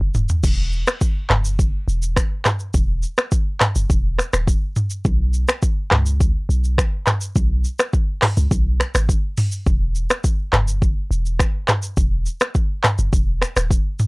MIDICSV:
0, 0, Header, 1, 3, 480
1, 0, Start_track
1, 0, Tempo, 576923
1, 362, Time_signature, 4, 2, 24, 8
1, 11708, End_track
2, 0, Start_track
2, 0, Title_t, "808-style bass"
2, 0, Program_c, 0, 38
2, 8, Note_on_c, 0, 30, 88
2, 88, Note_off_c, 0, 30, 0
2, 123, Note_on_c, 0, 27, 93
2, 210, Note_off_c, 0, 27, 0
2, 362, Note_on_c, 0, 28, 110
2, 698, Note_off_c, 0, 28, 0
2, 1082, Note_on_c, 0, 30, 93
2, 1418, Note_off_c, 0, 30, 0
2, 1561, Note_on_c, 0, 28, 98
2, 1817, Note_off_c, 0, 28, 0
2, 2281, Note_on_c, 0, 28, 106
2, 2537, Note_off_c, 0, 28, 0
2, 3127, Note_on_c, 0, 30, 101
2, 3208, Note_off_c, 0, 30, 0
2, 3243, Note_on_c, 0, 28, 102
2, 3498, Note_off_c, 0, 28, 0
2, 3607, Note_on_c, 0, 27, 86
2, 3775, Note_off_c, 0, 27, 0
2, 4201, Note_on_c, 0, 35, 115
2, 4537, Note_off_c, 0, 35, 0
2, 4920, Note_on_c, 0, 37, 95
2, 5257, Note_off_c, 0, 37, 0
2, 5401, Note_on_c, 0, 35, 92
2, 5656, Note_off_c, 0, 35, 0
2, 6121, Note_on_c, 0, 35, 108
2, 6376, Note_off_c, 0, 35, 0
2, 6966, Note_on_c, 0, 37, 99
2, 7047, Note_off_c, 0, 37, 0
2, 7082, Note_on_c, 0, 35, 104
2, 7337, Note_off_c, 0, 35, 0
2, 7445, Note_on_c, 0, 32, 95
2, 7613, Note_off_c, 0, 32, 0
2, 8042, Note_on_c, 0, 28, 107
2, 8378, Note_off_c, 0, 28, 0
2, 8761, Note_on_c, 0, 30, 93
2, 9097, Note_off_c, 0, 30, 0
2, 9241, Note_on_c, 0, 28, 98
2, 9496, Note_off_c, 0, 28, 0
2, 9961, Note_on_c, 0, 28, 103
2, 10216, Note_off_c, 0, 28, 0
2, 10806, Note_on_c, 0, 30, 99
2, 10887, Note_off_c, 0, 30, 0
2, 10922, Note_on_c, 0, 28, 93
2, 11177, Note_off_c, 0, 28, 0
2, 11286, Note_on_c, 0, 27, 90
2, 11454, Note_off_c, 0, 27, 0
2, 11708, End_track
3, 0, Start_track
3, 0, Title_t, "Drums"
3, 121, Note_on_c, 9, 82, 49
3, 123, Note_on_c, 9, 45, 85
3, 205, Note_off_c, 9, 82, 0
3, 206, Note_off_c, 9, 45, 0
3, 239, Note_on_c, 9, 82, 69
3, 247, Note_on_c, 9, 43, 94
3, 322, Note_off_c, 9, 82, 0
3, 331, Note_off_c, 9, 43, 0
3, 362, Note_on_c, 9, 82, 76
3, 363, Note_on_c, 9, 36, 112
3, 363, Note_on_c, 9, 49, 96
3, 445, Note_off_c, 9, 82, 0
3, 446, Note_off_c, 9, 36, 0
3, 446, Note_off_c, 9, 49, 0
3, 602, Note_on_c, 9, 82, 52
3, 685, Note_off_c, 9, 82, 0
3, 724, Note_on_c, 9, 82, 69
3, 728, Note_on_c, 9, 37, 115
3, 734, Note_on_c, 9, 26, 93
3, 807, Note_off_c, 9, 82, 0
3, 811, Note_off_c, 9, 37, 0
3, 817, Note_off_c, 9, 26, 0
3, 842, Note_on_c, 9, 36, 98
3, 842, Note_on_c, 9, 82, 78
3, 925, Note_off_c, 9, 82, 0
3, 926, Note_off_c, 9, 36, 0
3, 1082, Note_on_c, 9, 37, 94
3, 1082, Note_on_c, 9, 39, 99
3, 1083, Note_on_c, 9, 82, 47
3, 1085, Note_on_c, 9, 45, 96
3, 1089, Note_on_c, 9, 26, 79
3, 1166, Note_off_c, 9, 37, 0
3, 1166, Note_off_c, 9, 39, 0
3, 1166, Note_off_c, 9, 82, 0
3, 1168, Note_off_c, 9, 45, 0
3, 1172, Note_off_c, 9, 26, 0
3, 1204, Note_on_c, 9, 82, 77
3, 1287, Note_off_c, 9, 82, 0
3, 1323, Note_on_c, 9, 36, 112
3, 1325, Note_on_c, 9, 82, 72
3, 1406, Note_off_c, 9, 36, 0
3, 1408, Note_off_c, 9, 82, 0
3, 1571, Note_on_c, 9, 82, 53
3, 1654, Note_off_c, 9, 82, 0
3, 1684, Note_on_c, 9, 82, 78
3, 1767, Note_off_c, 9, 82, 0
3, 1801, Note_on_c, 9, 37, 97
3, 1802, Note_on_c, 9, 36, 97
3, 1807, Note_on_c, 9, 26, 77
3, 1807, Note_on_c, 9, 82, 79
3, 1884, Note_off_c, 9, 37, 0
3, 1886, Note_off_c, 9, 36, 0
3, 1890, Note_off_c, 9, 26, 0
3, 1890, Note_off_c, 9, 82, 0
3, 2040, Note_on_c, 9, 82, 48
3, 2042, Note_on_c, 9, 37, 97
3, 2042, Note_on_c, 9, 39, 95
3, 2042, Note_on_c, 9, 45, 92
3, 2048, Note_on_c, 9, 26, 75
3, 2123, Note_off_c, 9, 82, 0
3, 2125, Note_off_c, 9, 37, 0
3, 2125, Note_off_c, 9, 39, 0
3, 2125, Note_off_c, 9, 45, 0
3, 2132, Note_off_c, 9, 26, 0
3, 2158, Note_on_c, 9, 82, 67
3, 2241, Note_off_c, 9, 82, 0
3, 2279, Note_on_c, 9, 82, 78
3, 2281, Note_on_c, 9, 36, 115
3, 2362, Note_off_c, 9, 82, 0
3, 2364, Note_off_c, 9, 36, 0
3, 2519, Note_on_c, 9, 82, 51
3, 2602, Note_off_c, 9, 82, 0
3, 2641, Note_on_c, 9, 82, 66
3, 2644, Note_on_c, 9, 37, 114
3, 2651, Note_on_c, 9, 26, 93
3, 2724, Note_off_c, 9, 82, 0
3, 2727, Note_off_c, 9, 37, 0
3, 2734, Note_off_c, 9, 26, 0
3, 2759, Note_on_c, 9, 82, 79
3, 2761, Note_on_c, 9, 36, 102
3, 2842, Note_off_c, 9, 82, 0
3, 2844, Note_off_c, 9, 36, 0
3, 3001, Note_on_c, 9, 37, 98
3, 3001, Note_on_c, 9, 39, 101
3, 3002, Note_on_c, 9, 82, 51
3, 3004, Note_on_c, 9, 45, 96
3, 3008, Note_on_c, 9, 26, 80
3, 3084, Note_off_c, 9, 37, 0
3, 3084, Note_off_c, 9, 39, 0
3, 3085, Note_off_c, 9, 82, 0
3, 3087, Note_off_c, 9, 45, 0
3, 3091, Note_off_c, 9, 26, 0
3, 3124, Note_on_c, 9, 82, 85
3, 3208, Note_off_c, 9, 82, 0
3, 3243, Note_on_c, 9, 36, 113
3, 3246, Note_on_c, 9, 82, 72
3, 3326, Note_off_c, 9, 36, 0
3, 3329, Note_off_c, 9, 82, 0
3, 3482, Note_on_c, 9, 37, 91
3, 3489, Note_on_c, 9, 26, 72
3, 3492, Note_on_c, 9, 82, 53
3, 3565, Note_off_c, 9, 37, 0
3, 3572, Note_off_c, 9, 26, 0
3, 3575, Note_off_c, 9, 82, 0
3, 3605, Note_on_c, 9, 37, 96
3, 3605, Note_on_c, 9, 82, 77
3, 3612, Note_on_c, 9, 26, 74
3, 3688, Note_off_c, 9, 37, 0
3, 3688, Note_off_c, 9, 82, 0
3, 3695, Note_off_c, 9, 26, 0
3, 3723, Note_on_c, 9, 36, 103
3, 3728, Note_on_c, 9, 82, 77
3, 3806, Note_off_c, 9, 36, 0
3, 3811, Note_off_c, 9, 82, 0
3, 3960, Note_on_c, 9, 82, 53
3, 3963, Note_on_c, 9, 45, 92
3, 4044, Note_off_c, 9, 82, 0
3, 4046, Note_off_c, 9, 45, 0
3, 4078, Note_on_c, 9, 82, 71
3, 4161, Note_off_c, 9, 82, 0
3, 4200, Note_on_c, 9, 82, 74
3, 4201, Note_on_c, 9, 36, 115
3, 4283, Note_off_c, 9, 82, 0
3, 4284, Note_off_c, 9, 36, 0
3, 4439, Note_on_c, 9, 82, 51
3, 4522, Note_off_c, 9, 82, 0
3, 4560, Note_on_c, 9, 82, 69
3, 4564, Note_on_c, 9, 37, 114
3, 4570, Note_on_c, 9, 26, 91
3, 4644, Note_off_c, 9, 82, 0
3, 4647, Note_off_c, 9, 37, 0
3, 4654, Note_off_c, 9, 26, 0
3, 4679, Note_on_c, 9, 82, 74
3, 4681, Note_on_c, 9, 36, 98
3, 4762, Note_off_c, 9, 82, 0
3, 4764, Note_off_c, 9, 36, 0
3, 4921, Note_on_c, 9, 37, 96
3, 4921, Note_on_c, 9, 39, 97
3, 4921, Note_on_c, 9, 82, 49
3, 4923, Note_on_c, 9, 45, 99
3, 4927, Note_on_c, 9, 26, 77
3, 5004, Note_off_c, 9, 37, 0
3, 5004, Note_off_c, 9, 39, 0
3, 5005, Note_off_c, 9, 82, 0
3, 5006, Note_off_c, 9, 45, 0
3, 5010, Note_off_c, 9, 26, 0
3, 5043, Note_on_c, 9, 82, 83
3, 5126, Note_off_c, 9, 82, 0
3, 5162, Note_on_c, 9, 36, 120
3, 5165, Note_on_c, 9, 82, 75
3, 5245, Note_off_c, 9, 36, 0
3, 5248, Note_off_c, 9, 82, 0
3, 5411, Note_on_c, 9, 82, 51
3, 5494, Note_off_c, 9, 82, 0
3, 5525, Note_on_c, 9, 82, 79
3, 5609, Note_off_c, 9, 82, 0
3, 5642, Note_on_c, 9, 36, 103
3, 5642, Note_on_c, 9, 37, 97
3, 5648, Note_on_c, 9, 82, 79
3, 5649, Note_on_c, 9, 26, 79
3, 5725, Note_off_c, 9, 37, 0
3, 5726, Note_off_c, 9, 36, 0
3, 5731, Note_off_c, 9, 82, 0
3, 5732, Note_off_c, 9, 26, 0
3, 5880, Note_on_c, 9, 82, 52
3, 5882, Note_on_c, 9, 37, 91
3, 5882, Note_on_c, 9, 39, 94
3, 5882, Note_on_c, 9, 45, 96
3, 5889, Note_on_c, 9, 26, 75
3, 5963, Note_off_c, 9, 82, 0
3, 5965, Note_off_c, 9, 37, 0
3, 5965, Note_off_c, 9, 39, 0
3, 5965, Note_off_c, 9, 45, 0
3, 5972, Note_off_c, 9, 26, 0
3, 5998, Note_on_c, 9, 82, 72
3, 6082, Note_off_c, 9, 82, 0
3, 6120, Note_on_c, 9, 82, 80
3, 6121, Note_on_c, 9, 36, 118
3, 6204, Note_off_c, 9, 36, 0
3, 6204, Note_off_c, 9, 82, 0
3, 6360, Note_on_c, 9, 82, 51
3, 6444, Note_off_c, 9, 82, 0
3, 6481, Note_on_c, 9, 82, 72
3, 6485, Note_on_c, 9, 37, 118
3, 6491, Note_on_c, 9, 26, 91
3, 6565, Note_off_c, 9, 82, 0
3, 6568, Note_off_c, 9, 37, 0
3, 6575, Note_off_c, 9, 26, 0
3, 6600, Note_on_c, 9, 82, 77
3, 6601, Note_on_c, 9, 36, 100
3, 6683, Note_off_c, 9, 82, 0
3, 6684, Note_off_c, 9, 36, 0
3, 6842, Note_on_c, 9, 37, 97
3, 6842, Note_on_c, 9, 39, 100
3, 6843, Note_on_c, 9, 46, 69
3, 6843, Note_on_c, 9, 82, 50
3, 6844, Note_on_c, 9, 45, 101
3, 6848, Note_on_c, 9, 26, 79
3, 6925, Note_off_c, 9, 37, 0
3, 6925, Note_off_c, 9, 39, 0
3, 6926, Note_off_c, 9, 46, 0
3, 6926, Note_off_c, 9, 82, 0
3, 6927, Note_off_c, 9, 45, 0
3, 6931, Note_off_c, 9, 26, 0
3, 6964, Note_on_c, 9, 82, 82
3, 7047, Note_off_c, 9, 82, 0
3, 7082, Note_on_c, 9, 36, 117
3, 7085, Note_on_c, 9, 82, 74
3, 7165, Note_off_c, 9, 36, 0
3, 7168, Note_off_c, 9, 82, 0
3, 7321, Note_on_c, 9, 37, 87
3, 7328, Note_on_c, 9, 26, 74
3, 7330, Note_on_c, 9, 82, 53
3, 7404, Note_off_c, 9, 37, 0
3, 7411, Note_off_c, 9, 26, 0
3, 7414, Note_off_c, 9, 82, 0
3, 7445, Note_on_c, 9, 37, 101
3, 7445, Note_on_c, 9, 82, 79
3, 7451, Note_on_c, 9, 26, 76
3, 7528, Note_off_c, 9, 37, 0
3, 7528, Note_off_c, 9, 82, 0
3, 7534, Note_off_c, 9, 26, 0
3, 7562, Note_on_c, 9, 36, 100
3, 7566, Note_on_c, 9, 82, 82
3, 7645, Note_off_c, 9, 36, 0
3, 7649, Note_off_c, 9, 82, 0
3, 7800, Note_on_c, 9, 46, 74
3, 7800, Note_on_c, 9, 82, 51
3, 7802, Note_on_c, 9, 45, 98
3, 7883, Note_off_c, 9, 46, 0
3, 7883, Note_off_c, 9, 82, 0
3, 7886, Note_off_c, 9, 45, 0
3, 7918, Note_on_c, 9, 82, 71
3, 8001, Note_off_c, 9, 82, 0
3, 8041, Note_on_c, 9, 36, 114
3, 8041, Note_on_c, 9, 82, 78
3, 8124, Note_off_c, 9, 36, 0
3, 8124, Note_off_c, 9, 82, 0
3, 8281, Note_on_c, 9, 82, 51
3, 8364, Note_off_c, 9, 82, 0
3, 8403, Note_on_c, 9, 82, 68
3, 8406, Note_on_c, 9, 37, 114
3, 8413, Note_on_c, 9, 26, 92
3, 8486, Note_off_c, 9, 82, 0
3, 8490, Note_off_c, 9, 37, 0
3, 8496, Note_off_c, 9, 26, 0
3, 8521, Note_on_c, 9, 36, 96
3, 8521, Note_on_c, 9, 82, 77
3, 8604, Note_off_c, 9, 36, 0
3, 8604, Note_off_c, 9, 82, 0
3, 8762, Note_on_c, 9, 37, 102
3, 8762, Note_on_c, 9, 39, 98
3, 8763, Note_on_c, 9, 82, 51
3, 8765, Note_on_c, 9, 45, 98
3, 8769, Note_on_c, 9, 26, 81
3, 8845, Note_off_c, 9, 37, 0
3, 8845, Note_off_c, 9, 39, 0
3, 8846, Note_off_c, 9, 82, 0
3, 8848, Note_off_c, 9, 45, 0
3, 8852, Note_off_c, 9, 26, 0
3, 8884, Note_on_c, 9, 82, 81
3, 8967, Note_off_c, 9, 82, 0
3, 9002, Note_on_c, 9, 36, 114
3, 9005, Note_on_c, 9, 82, 73
3, 9085, Note_off_c, 9, 36, 0
3, 9088, Note_off_c, 9, 82, 0
3, 9250, Note_on_c, 9, 82, 54
3, 9334, Note_off_c, 9, 82, 0
3, 9365, Note_on_c, 9, 82, 78
3, 9449, Note_off_c, 9, 82, 0
3, 9480, Note_on_c, 9, 37, 97
3, 9481, Note_on_c, 9, 36, 100
3, 9486, Note_on_c, 9, 26, 79
3, 9486, Note_on_c, 9, 82, 81
3, 9563, Note_off_c, 9, 37, 0
3, 9565, Note_off_c, 9, 36, 0
3, 9569, Note_off_c, 9, 82, 0
3, 9570, Note_off_c, 9, 26, 0
3, 9719, Note_on_c, 9, 82, 53
3, 9722, Note_on_c, 9, 37, 99
3, 9722, Note_on_c, 9, 39, 99
3, 9722, Note_on_c, 9, 45, 91
3, 9728, Note_on_c, 9, 26, 79
3, 9803, Note_off_c, 9, 82, 0
3, 9805, Note_off_c, 9, 37, 0
3, 9805, Note_off_c, 9, 39, 0
3, 9805, Note_off_c, 9, 45, 0
3, 9811, Note_off_c, 9, 26, 0
3, 9838, Note_on_c, 9, 82, 69
3, 9921, Note_off_c, 9, 82, 0
3, 9960, Note_on_c, 9, 82, 78
3, 9961, Note_on_c, 9, 36, 114
3, 10043, Note_off_c, 9, 82, 0
3, 10044, Note_off_c, 9, 36, 0
3, 10200, Note_on_c, 9, 82, 52
3, 10283, Note_off_c, 9, 82, 0
3, 10322, Note_on_c, 9, 82, 66
3, 10325, Note_on_c, 9, 37, 115
3, 10331, Note_on_c, 9, 26, 95
3, 10405, Note_off_c, 9, 82, 0
3, 10408, Note_off_c, 9, 37, 0
3, 10415, Note_off_c, 9, 26, 0
3, 10440, Note_on_c, 9, 82, 76
3, 10441, Note_on_c, 9, 36, 95
3, 10523, Note_off_c, 9, 82, 0
3, 10524, Note_off_c, 9, 36, 0
3, 10682, Note_on_c, 9, 37, 102
3, 10682, Note_on_c, 9, 39, 102
3, 10683, Note_on_c, 9, 82, 52
3, 10685, Note_on_c, 9, 45, 99
3, 10689, Note_on_c, 9, 26, 78
3, 10765, Note_off_c, 9, 37, 0
3, 10765, Note_off_c, 9, 39, 0
3, 10766, Note_off_c, 9, 82, 0
3, 10768, Note_off_c, 9, 45, 0
3, 10772, Note_off_c, 9, 26, 0
3, 10803, Note_on_c, 9, 82, 83
3, 10886, Note_off_c, 9, 82, 0
3, 10922, Note_on_c, 9, 36, 115
3, 10925, Note_on_c, 9, 82, 75
3, 11005, Note_off_c, 9, 36, 0
3, 11008, Note_off_c, 9, 82, 0
3, 11162, Note_on_c, 9, 37, 93
3, 11169, Note_on_c, 9, 26, 71
3, 11172, Note_on_c, 9, 82, 51
3, 11245, Note_off_c, 9, 37, 0
3, 11252, Note_off_c, 9, 26, 0
3, 11255, Note_off_c, 9, 82, 0
3, 11286, Note_on_c, 9, 37, 99
3, 11286, Note_on_c, 9, 82, 77
3, 11293, Note_on_c, 9, 26, 77
3, 11370, Note_off_c, 9, 37, 0
3, 11370, Note_off_c, 9, 82, 0
3, 11376, Note_off_c, 9, 26, 0
3, 11403, Note_on_c, 9, 36, 103
3, 11409, Note_on_c, 9, 82, 80
3, 11486, Note_off_c, 9, 36, 0
3, 11492, Note_off_c, 9, 82, 0
3, 11642, Note_on_c, 9, 82, 51
3, 11645, Note_on_c, 9, 45, 96
3, 11708, Note_off_c, 9, 45, 0
3, 11708, Note_off_c, 9, 82, 0
3, 11708, End_track
0, 0, End_of_file